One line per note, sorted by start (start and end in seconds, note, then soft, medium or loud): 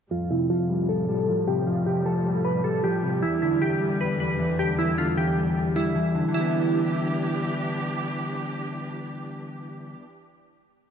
0.11 1.08 F2 medium
0.11 3.20 A2 medium
0.11 3.20 F3 medium
0.11 6.30 G3 medium
0.11 0.28 F4 medium
0.31 1.28 C3 medium
0.31 0.47 E4 medium
0.50 1.27 F3 medium
0.50 0.87 F4 medium
0.70 1.07 G3 medium
0.89 1.06 A4 medium
1.09 2.06 G3 medium
1.09 1.45 A4 medium
1.28 2.05 F3 medium
1.47 1.85 C3 medium
1.47 1.64 G4 medium
1.67 2.64 F2 medium
1.67 1.84 F4 medium
1.86 2.84 C3 medium
1.86 2.03 G4 medium
2.06 2.83 F3 medium
2.06 2.42 A4 medium
2.25 2.63 G3 medium
2.45 2.61 B4 medium
2.64 3.23 G3 medium
2.64 2.81 A4 medium
2.84 3.23 F3 medium
2.84 3.20 G4 medium
3.03 3.23 C3 medium
3.22 4.20 E2 medium
3.22 6.31 E2 medium
3.22 6.31 D3 medium
3.22 3.39 E4 medium
3.42 4.40 D3 medium
3.42 3.59 E4 medium
3.62 4.38 E3 medium
3.62 3.98 G4 medium
3.81 4.19 G3 medium
4.01 4.17 B4 medium
4.20 5.17 G3 medium
4.20 4.57 B4 medium
4.39 5.16 E3 medium
4.59 4.97 D3 medium
4.59 4.76 G4 medium
4.79 5.76 E2 medium
4.79 4.95 E4 medium
4.98 5.95 D3 medium
4.98 5.15 F4 medium
5.17 5.94 E3 medium
5.17 5.72 G4 medium
5.37 5.75 G3 medium
5.76 6.34 G3 medium
5.76 6.31 E4 medium
5.95 6.31 E3 medium
6.15 6.27 D3 medium
6.28 9.93 D3 medium
6.32 9.97 E3 medium
6.32 9.99 E3 medium
6.32 9.99 D4 medium
6.32 7.47 E4 medium
6.32 9.99 G4 medium
6.36 10.01 G3 medium
6.40 10.05 B3 medium